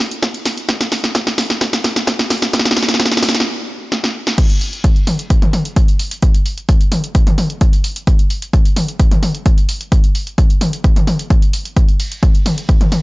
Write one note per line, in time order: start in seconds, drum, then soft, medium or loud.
0.11 closed hi-hat medium
0.23 kick loud
0.23 snare medium
0.23 closed hi-hat medium
0.34 closed hi-hat soft
0.46 snare medium
0.46 open hi-hat medium
0.57 closed hi-hat medium
0.69 kick loud
0.69 snare medium
0.69 closed hi-hat medium
0.81 snare medium
0.81 closed hi-hat medium
0.92 snare medium
0.92 open hi-hat loud
1.04 snare medium
1.04 closed hi-hat soft
1.15 kick loud
1.15 snare loud
1.15 closed hi-hat medium
1.27 snare medium
1.27 closed hi-hat medium
1.38 snare medium
1.38 open hi-hat medium
1.50 snare medium
1.50 closed hi-hat medium
1.61 kick loud
1.61 snare loud
1.61 closed hi-hat medium
1.73 snare medium
1.73 closed hi-hat medium
1.84 snare loud
1.84 open hi-hat loud
1.96 snare medium
1.96 closed hi-hat medium
2.07 kick loud
2.07 snare loud
2.07 closed hi-hat medium
2.19 snare medium
2.19 closed hi-hat medium
2.30 snare loud
2.30 open hi-hat medium
2.42 snare medium
2.42 closed hi-hat medium
2.53 kick loud
2.53 snare loud
2.53 closed hi-hat medium
2.59 snare medium
2.65 snare medium
2.65 closed hi-hat medium
2.71 snare medium
2.77 snare loud
2.77 open hi-hat loud
2.83 snare medium
2.88 snare medium
2.88 closed hi-hat medium
2.94 snare medium
3.00 kick loud
3.00 snare loud
3.00 closed hi-hat medium
3.06 snare medium
3.12 snare medium
3.12 closed hi-hat medium
3.17 snare medium
3.23 snare loud
3.23 open hi-hat medium
3.29 snare medium
3.35 snare medium
3.35 closed hi-hat medium
3.40 snare medium
3.92 snare medium
4.04 snare medium
4.27 snare medium
4.38 kick loud
4.38 closed hi-hat medium
4.38 crash loud
4.50 closed hi-hat medium
4.61 open hi-hat loud
4.73 closed hi-hat medium
4.84 kick loud
4.84 closed hi-hat medium
4.96 closed hi-hat medium
5.07 open hi-hat medium
5.07 mid tom medium
5.19 closed hi-hat medium
5.30 kick loud
5.30 closed hi-hat medium
5.42 closed hi-hat medium
5.42 mid tom medium
5.53 open hi-hat loud
5.53 mid tom medium
5.65 closed hi-hat medium
5.76 kick loud
5.76 closed hi-hat medium
5.88 closed hi-hat medium
5.99 open hi-hat medium
6.11 closed hi-hat medium
6.22 kick loud
6.22 closed hi-hat medium
6.34 closed hi-hat medium
6.46 open hi-hat loud
6.58 closed hi-hat medium
6.69 kick loud
6.69 closed hi-hat medium
6.81 closed hi-hat medium
6.92 open hi-hat medium
6.92 mid tom medium
7.04 closed hi-hat medium
7.15 kick loud
7.15 closed hi-hat medium
7.27 closed hi-hat medium
7.27 mid tom medium
7.38 open hi-hat loud
7.38 mid tom medium
7.50 closed hi-hat medium
7.61 kick loud
7.61 closed hi-hat medium
7.73 closed hi-hat medium
7.84 open hi-hat medium
7.96 closed hi-hat medium
8.07 kick loud
8.07 closed hi-hat medium
8.19 closed hi-hat medium
8.30 open hi-hat loud
8.42 closed hi-hat medium
8.53 kick loud
8.53 closed hi-hat medium
8.65 closed hi-hat medium
8.76 open hi-hat loud
8.76 mid tom medium
8.88 closed hi-hat medium
9.00 kick loud
9.00 closed hi-hat medium
9.11 closed hi-hat medium
9.11 mid tom medium
9.23 open hi-hat loud
9.23 mid tom medium
9.35 closed hi-hat medium
9.46 kick loud
9.46 closed hi-hat medium
9.58 closed hi-hat medium
9.69 open hi-hat loud
9.81 closed hi-hat medium
9.92 kick loud
9.92 closed hi-hat medium
10.04 closed hi-hat medium
10.15 open hi-hat loud
10.27 closed hi-hat medium
10.38 kick loud
10.38 closed hi-hat medium
10.50 closed hi-hat medium
10.61 open hi-hat medium
10.61 mid tom medium
10.73 closed hi-hat medium
10.84 kick loud
10.84 closed hi-hat medium
10.96 closed hi-hat medium
10.96 mid tom medium
11.07 open hi-hat loud
11.07 mid tom medium
11.19 closed hi-hat soft
11.30 kick loud
11.30 closed hi-hat medium
11.42 closed hi-hat medium
11.53 open hi-hat medium
11.65 closed hi-hat medium
11.77 kick loud
11.77 closed hi-hat medium
11.89 closed hi-hat soft
12.00 open hi-hat loud
12.00 ride medium
12.12 closed hi-hat soft
12.23 kick loud
12.23 closed hi-hat medium
12.35 closed hi-hat medium
12.46 open hi-hat medium
12.46 mid tom loud
12.46 ride medium
12.58 closed hi-hat soft
12.69 kick loud
12.69 closed hi-hat medium
12.81 closed hi-hat soft
12.81 mid tom medium
12.92 open hi-hat loud
12.92 mid tom medium
12.92 ride medium